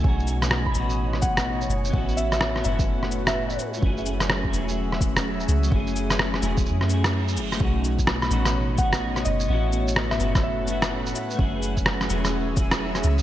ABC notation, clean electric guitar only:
X:1
M:4/4
L:1/8
Q:"Swing 16ths" 1/4=127
K:F#dor
V:1 name="Clean electric guitar"
[A,CDF]3 [A,CDF]4- [A,CDF] | [B,CEF]3 [B,CEF]4- [B,CEF] | [A,CEG]3 [A,CEG]4- [A,CEG] | [A,CEG]3 [A,CEG]2 [A,CEG]3 |
[A,CDF]3 [A,CDF]2 [A,CDF]3 | [B,CEF]3 [B,CEF]2 [B,CEF]3 | [A,CEG]3 [A,CEG]2 [A,CEG]3 |]